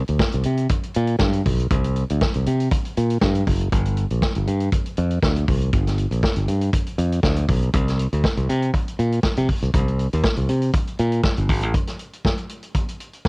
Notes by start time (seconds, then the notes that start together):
0.08 D2, closed hi-hat
0.19 kick, snare
0.32 C2, closed hi-hat
0.44 C3, closed hi-hat
0.57 closed hi-hat
0.69 kick, closed hi-hat
0.83 closed hi-hat
0.94 A#2, closed hi-hat
1.07 closed hi-hat
1.19 G2, kick, snare
1.33 closed hi-hat
1.46 B1, kick, open hi-hat
1.60 closed hi-hat
1.70 C2, kick, closed hi-hat
1.84 closed hi-hat
1.96 closed hi-hat
2.10 D2, closed hi-hat
2.21 kick, snare
2.34 C2, closed hi-hat
2.46 C3, closed hi-hat
2.60 closed hi-hat
2.71 kick, closed hi-hat
2.85 closed hi-hat
2.97 A#2, closed hi-hat
3.10 closed hi-hat
3.21 G2, kick, snare
3.35 closed hi-hat
3.47 F#1, kick, open hi-hat
3.61 closed hi-hat
3.72 G1, kick, closed hi-hat
3.85 closed hi-hat
3.97 closed hi-hat
4.10 A#1, closed hi-hat
4.22 kick, snare
4.35 G1, closed hi-hat
4.47 G2, closed hi-hat
4.60 closed hi-hat
4.72 kick, closed hi-hat
4.86 closed hi-hat
4.97 F2, closed hi-hat
5.11 closed hi-hat
5.22 D2, kick, snare
5.36 closed hi-hat
5.48 C2, kick, open hi-hat
5.61 closed hi-hat
5.73 G1, kick, closed hi-hat
5.87 snare, closed hi-hat
5.98 closed hi-hat
6.11 A#1, closed hi-hat
6.23 kick, snare
6.36 G1, closed hi-hat
6.48 G2, closed hi-hat
6.61 closed hi-hat
6.73 kick, closed hi-hat
6.87 closed hi-hat
6.98 F2, closed hi-hat
7.12 closed hi-hat
7.23 D2, kick, snare
7.36 closed hi-hat
7.49 B1, kick, open hi-hat
7.63 closed hi-hat
7.74 C2, kick, closed hi-hat
7.88 snare, closed hi-hat
7.99 closed hi-hat
8.13 D2, closed hi-hat
8.24 kick, snare
8.37 C2, closed hi-hat
8.49 C3, closed hi-hat
8.62 closed hi-hat
8.74 kick, closed hi-hat
8.88 closed hi-hat
8.99 A#2, closed hi-hat
9.12 closed hi-hat
9.23 muted fingered electric bass stroke, kick, snare
9.37 C3, closed hi-hat
9.49 kick, open hi-hat
9.62 C2, closed hi-hat
9.74 C2, kick, closed hi-hat
9.88 closed hi-hat
9.99 closed hi-hat
10.13 D#2, closed hi-hat
10.24 kick, snare
10.36 C2, closed hi-hat
10.49 C3, closed hi-hat
10.62 closed hi-hat
10.74 kick, closed hi-hat
10.87 closed hi-hat
10.99 A#2, closed hi-hat
11.12 closed hi-hat
11.24 kick, snare
11.37 G1, closed hi-hat
11.49 G#1, kick, open hi-hat
11.63 A1, closed hi-hat
11.74 kick, closed hi-hat
11.87 snare, closed hi-hat
11.99 closed hi-hat
12.13 closed hi-hat
12.25 kick, snare
12.38 closed hi-hat
12.50 closed hi-hat
12.63 closed hi-hat
12.75 kick, closed hi-hat
12.89 closed hi-hat
13.00 closed hi-hat
13.13 closed hi-hat
13.25 snare